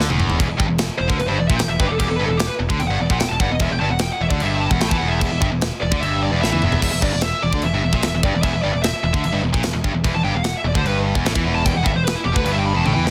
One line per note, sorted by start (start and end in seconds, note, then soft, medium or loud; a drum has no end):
0.01 snare medium
0.09 0.38 E1 loud
0.09 0.38 E2 medium
0.09 high tom medium
0.20 mid tom medium
0.30 floor tom medium
0.39 0.49 E1 medium
0.39 0.48 E2 loud
0.39 kick loud
0.39 china medium
0.49 0.59 E1 medium
0.49 0.58 E2 medium
0.58 0.69 G1 medium
0.58 0.68 G2 loud
0.58 kick loud
0.68 0.88 E1 medium
0.68 0.85 E2 medium
0.78 snare loud
0.78 china medium
0.98 1.09 E1 medium
0.98 1.09 E2 medium
0.98 1.09 C5 medium
1.08 1.19 D2 loud
1.08 1.18 D3 loud
1.08 1.17 A#4 medium
1.08 kick loud
1.18 1.29 E1 medium
1.18 1.28 E2 medium
1.18 1.27 B4 medium
1.18 china medium
1.27 1.39 G1 medium
1.27 1.38 G2 medium
1.27 1.38 C5 loud
1.38 1.49 E1 medium
1.38 1.50 E2 medium
1.38 1.47 D5 medium
1.48 1.59 A#1 loud
1.48 1.59 A#2 loud
1.48 1.56 E5 medium
1.48 kick medium
1.56 1.69 E1 medium
1.56 1.68 E2 medium
1.56 1.68 G5 medium
1.56 snare loud
1.56 china medium
1.68 1.79 E1 medium
1.68 1.79 E2 medium
1.68 1.79 E5 medium
1.80 1.88 G1 loud
1.80 1.88 G2 loud
1.80 1.87 B4 medium
1.80 kick loud
1.86 1.99 E1 medium
1.86 1.98 E2 medium
1.86 1.93 G4 medium
1.91 1.99 A4 medium
1.98 2.09 E1 loud
1.98 2.09 E2 loud
1.98 2.09 G4 medium
1.98 kick loud
1.98 china medium
2.09 2.18 E1 medium
2.09 2.20 E2 medium
2.09 2.16 A4 medium
2.16 2.28 G1 medium
2.16 2.29 G2 loud
2.16 2.25 B4 medium
2.25 2.48 E1 medium
2.25 2.37 A4 medium
2.30 2.46 E2 medium
2.37 2.48 G4 medium
2.37 snare loud
2.37 china medium
2.47 2.54 B4 medium
2.60 2.69 E1 medium
2.60 2.70 E2 medium
2.70 2.80 D2 loud
2.70 2.79 D3 loud
2.70 kick loud
2.80 2.89 E1 medium
2.80 2.90 E2 medium
2.80 2.87 G5 medium
2.80 china medium
2.88 2.99 G1 medium
2.88 3.00 G2 loud
2.88 2.99 F#5 medium
3.00 3.10 E1 medium
3.00 3.10 E2 medium
3.00 3.11 D5 medium
3.10 3.20 A#1 loud
3.10 3.20 A#2 medium
3.10 3.19 F#5 medium
3.10 kick loud
3.20 3.30 E1 medium
3.20 3.30 E2 medium
3.20 3.29 G5 medium
3.20 snare loud
3.20 china medium
3.29 3.40 E1 medium
3.29 3.40 E2 medium
3.29 3.40 A5 loud
3.40 3.50 G1 loud
3.40 3.50 G2 loud
3.40 3.50 F#5 medium
3.40 kick loud
3.51 3.60 E1 medium
3.51 3.59 E2 medium
3.51 3.61 D#5 medium
3.59 3.70 E1 loud
3.59 3.70 E2 loud
3.59 3.72 E5 medium
3.59 kick loud
3.59 china medium
3.71 3.80 E1 medium
3.71 3.80 E2 medium
3.71 3.79 G5 medium
3.79 3.89 G1 medium
3.79 3.90 G2 medium
3.79 3.90 A5 medium
3.90 4.09 E1 medium
3.90 4.07 E2 medium
3.90 4.01 F#5 medium
3.99 4.11 G5 medium
3.99 snare loud
3.99 china medium
4.12 4.22 F#5 medium
4.21 4.30 E1 medium
4.21 4.31 E2 medium
4.21 4.29 E5 medium
4.30 4.40 D2 medium
4.30 4.40 D3 medium
4.30 4.40 D5 medium
4.30 kick loud
4.40 4.69 G1 medium
4.40 4.71 G2 loud
4.40 4.62 E5 medium
4.40 china medium
4.60 4.71 A5 loud
4.71 4.80 E1 loud
4.71 4.81 E2 loud
4.71 4.80 F#5 medium
4.71 kick medium
4.80 4.91 A1 medium
4.80 4.91 A2 loud
4.80 4.89 G5 medium
4.80 snare loud
4.80 china medium
4.89 5.00 E2 medium
4.89 5.01 E3 loud
4.89 4.98 A5 loud
4.89 kick loud
4.98 5.20 E1 loud
4.98 5.20 E2 loud
4.98 5.10 F#5 medium
5.08 5.47 E5 medium
5.21 5.30 E1 loud
5.21 5.30 E2 loud
5.21 kick loud
5.21 china medium
5.31 5.41 E1 medium
5.31 5.41 E2 medium
5.41 5.51 G1 medium
5.41 5.51 G2 loud
5.41 kick loud
5.52 5.71 E1 medium
5.52 5.68 E2 medium
5.61 snare loud
5.61 china medium
5.81 5.91 E1 medium
5.81 5.92 E2 medium
5.81 6.00 D5 medium
5.92 6.01 D2 medium
5.92 6.01 D3 loud
5.92 kick loud
6.00 6.30 G1 medium
6.00 6.32 G2 loud
6.00 6.21 E5 medium
6.00 china medium
6.23 6.41 D5 medium
6.32 6.42 E1 loud
6.32 6.42 E2 loud
6.42 6.51 A1 medium
6.42 6.52 A2 medium
6.42 6.98 E5 medium
6.42 snare medium
6.52 6.62 E2 loud
6.52 6.62 E3 medium
6.52 high tom medium
6.62 6.81 E1 medium
6.62 6.81 E2 loud
6.62 mid tom medium
6.72 floor tom medium
6.82 6.92 E1 loud
6.82 6.91 E2 loud
6.82 kick loud
6.82 china medium
6.82 crash loud
6.92 7.02 E1 medium
6.92 7.02 E2 medium
7.02 7.12 G1 medium
7.02 7.12 G2 loud
7.02 7.22 D5 medium
7.02 kick loud
7.13 7.32 E1 medium
7.13 7.29 E2 medium
7.21 7.42 E5 medium
7.21 snare loud
7.21 china medium
7.42 7.52 E1 medium
7.42 7.53 E2 medium
7.42 7.62 D5 medium
7.53 7.62 D2 loud
7.53 7.63 D3 medium
7.53 kick loud
7.62 7.73 E1 medium
7.62 7.73 E2 medium
7.62 8.20 E5 medium
7.62 china medium
7.73 7.83 G1 medium
7.73 7.83 G2 loud
7.83 7.93 E1 medium
7.83 7.94 E2 medium
7.93 8.03 A#1 loud
7.93 8.03 A#2 loud
7.93 kick medium
8.02 8.13 E1 medium
8.02 8.13 E2 medium
8.02 snare loud
8.02 china medium
8.13 8.23 E1 medium
8.13 8.24 E2 medium
8.23 8.33 G1 loud
8.23 8.34 G2 loud
8.23 8.42 D5 medium
8.23 kick loud
8.34 8.43 E1 medium
8.34 8.43 E2 medium
8.42 8.53 E1 loud
8.42 8.53 E2 loud
8.42 8.62 E5 loud
8.42 kick loud
8.42 china medium
8.54 8.64 E1 medium
8.54 8.63 E2 medium
8.62 8.73 G1 medium
8.62 8.73 G2 loud
8.62 8.82 D5 medium
8.73 8.93 E1 medium
8.73 8.90 E2 medium
8.83 9.40 E5 medium
8.83 snare loud
8.83 china medium
9.04 9.13 E1 medium
9.04 9.14 E2 medium
9.13 9.22 D2 loud
9.13 9.23 D3 loud
9.13 kick loud
9.23 9.33 E1 medium
9.23 9.32 E2 medium
9.23 china medium
9.32 9.42 G1 medium
9.32 9.43 G2 loud
9.43 9.53 E1 medium
9.43 9.54 E2 medium
9.53 9.63 A#1 loud
9.53 9.63 A#2 loud
9.53 kick medium
9.63 9.73 E1 medium
9.63 9.72 E2 medium
9.63 snare loud
9.63 china medium
9.73 9.83 E1 medium
9.73 9.84 E2 medium
9.84 9.93 G1 loud
9.84 9.94 G2 loud
9.84 kick loud
9.94 10.03 E1 medium
9.94 10.03 E2 medium
10.04 10.13 E1 loud
10.04 10.14 E2 loud
10.04 kick loud
10.04 china medium
10.14 10.23 E1 medium
10.14 10.24 E2 medium
10.14 10.23 A5 medium
10.24 10.33 G1 loud
10.24 10.34 G2 loud
10.24 10.34 G5 medium
10.35 10.53 E1 medium
10.35 10.52 E2 medium
10.35 10.44 F5 medium
10.44 10.54 F#5 loud
10.44 snare loud
10.44 china medium
10.57 10.66 E5 medium
10.64 10.74 E1 medium
10.64 10.75 E2 medium
10.68 10.76 D5 medium
10.75 10.83 D2 loud
10.75 10.84 D3 loud
10.75 10.86 C5 loud
10.75 kick loud
10.84 11.12 G1 loud
10.84 11.15 G2 loud
10.84 10.98 B4 medium
10.84 china medium
11.15 11.25 E1 loud
11.15 11.25 E2 medium
11.15 kick medium
11.25 11.34 A1 medium
11.25 11.34 A2 loud
11.25 snare loud
11.25 china medium
11.35 11.45 E2 loud
11.35 11.44 E3 loud
11.35 kick loud
11.44 11.64 E1 loud
11.44 11.63 E2 loud
11.55 11.65 A5 medium
11.64 11.75 E1 loud
11.64 11.73 E2 loud
11.64 11.75 G5 loud
11.64 kick loud
11.64 china medium
11.74 11.85 E1 medium
11.74 11.83 E2 medium
11.74 11.86 F#5 medium
11.83 11.95 G1 medium
11.83 11.93 G2 loud
11.83 11.95 E5 medium
11.83 kick loud
11.94 12.14 E1 medium
11.94 12.11 E2 medium
11.94 12.04 C5 medium
12.05 12.15 B4 medium
12.05 snare loud
12.05 china medium
12.15 12.25 E4 medium
12.24 12.35 E1 medium
12.24 12.35 E2 medium
12.24 12.35 G4 medium
12.33 12.45 D2 loud
12.33 12.44 D3 medium
12.33 12.44 B4 medium
12.33 kick medium
12.44 12.74 G1 medium
12.44 12.74 G2 loud
12.44 12.52 B4 medium
12.44 china medium
12.52 12.59 E5 medium
12.58 12.65 G5 medium
12.66 12.76 B5 loud
12.74 12.86 E1 loud
12.74 12.85 E2 loud
12.74 12.86 A5 medium
12.84 12.95 A1 loud
12.84 12.94 A2 loud
12.84 13.11 G5 medium
12.84 high tom medium
12.95 13.06 E2 loud
12.95 13.05 E3 loud
13.04 13.11 E1 loud
13.04 13.11 E2 loud
13.04 snare medium